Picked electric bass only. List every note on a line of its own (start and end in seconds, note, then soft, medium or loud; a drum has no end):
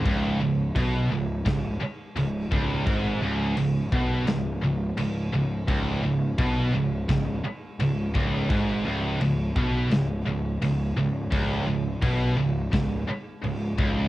0.05 0.38 C#1 medium
0.40 0.73 C#1 medium
0.76 1.08 B1 loud
1.10 1.43 C#1 medium
1.46 1.79 C#1 medium
1.81 muted picked electric bass stroke soft
2.16 2.49 C#1 medium
2.52 2.84 C#1 medium
2.86 3.19 G#1 loud
3.22 3.55 C#1 loud
3.57 3.90 C#1 medium
3.92 4.25 B1 loud
4.29 4.61 C#1 medium
4.63 4.95 C#1 medium
4.98 5.31 C#1 medium
5.33 5.66 C#1 medium
5.68 6.01 C#1 loud
6.04 6.36 C#1 medium
6.39 6.71 B1 loud
6.74 7.07 C#1 medium
7.09 7.42 C#1 medium
7.44 muted picked electric bass stroke soft
7.79 8.12 C#1 medium
8.15 8.48 C#1 loud
8.50 8.83 G#1 medium
8.86 9.18 C#1 loud
9.21 9.54 C#1 medium
9.56 9.89 B1 loud
9.92 10.24 C#1 medium
10.26 10.59 C#1 medium
10.61 10.94 C#1 medium
10.97 11.29 C#1 medium
11.32 11.65 C#1 medium
11.67 12.00 C#1 medium
12.03 12.35 B1 loud
12.37 12.70 C#1 medium
12.73 13.06 C#1 medium
13.07 muted picked electric bass stroke soft
13.43 13.76 C#1 medium
13.79 14.08 C#1 loud